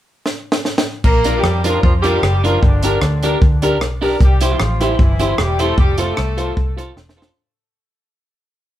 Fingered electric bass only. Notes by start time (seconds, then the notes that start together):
1.04 A#1
1.43 F2
1.83 F2
2.23 F#1
2.63 G1
3.01 D2
3.42 D2
3.81 B1
4.21 C2
4.60 A1
4.99 G1
5.39 E1
5.77 F1
6.18 C2
6.57 C2
6.96 E1